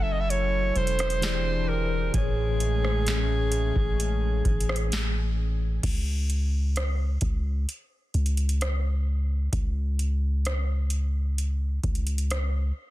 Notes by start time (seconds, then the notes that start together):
Already playing: F#1 F#3 C#4 E4 A4 G#5
0.03 E5
0.12 D#5
0.21 E5
0.30 C#5, closed hi-hat
0.76 E1 C5, closed hi-hat
0.87 closed hi-hat
0.99 cross-stick, closed hi-hat
1.10 closed hi-hat
1.21 E3 C4 D4 E4 G4 G#4 C5 D5 G5, snare, closed hi-hat
1.69 A#4
2.12 A1 A2 E3 G#3 A3 C#4 G#4 B4, kick, closed hi-hat
2.17 C#5
2.60 closed hi-hat
2.85 cross-stick
3.07 snare, closed hi-hat
3.52 closed hi-hat
3.76 A1, kick
4.00 closed hi-hat
4.45 A1, kick, closed hi-hat
4.60 closed hi-hat
4.69 cross-stick
4.76 closed hi-hat
4.92 snare, closed hi-hat
5.83 C#2, kick, closed hi-hat, crash
6.30 closed hi-hat
6.76 cross-stick, closed hi-hat
7.21 C#2, kick, closed hi-hat
7.69 closed hi-hat
8.14 C#2, closed hi-hat
8.26 closed hi-hat
8.37 closed hi-hat
8.49 closed hi-hat
8.61 cross-stick, closed hi-hat
9.53 C#2, kick, closed hi-hat
9.99 closed hi-hat
10.45 cross-stick, closed hi-hat
10.90 closed hi-hat
11.38 closed hi-hat
11.84 C#2, kick, closed hi-hat
11.95 closed hi-hat
12.07 closed hi-hat
12.18 closed hi-hat
12.30 cross-stick, closed hi-hat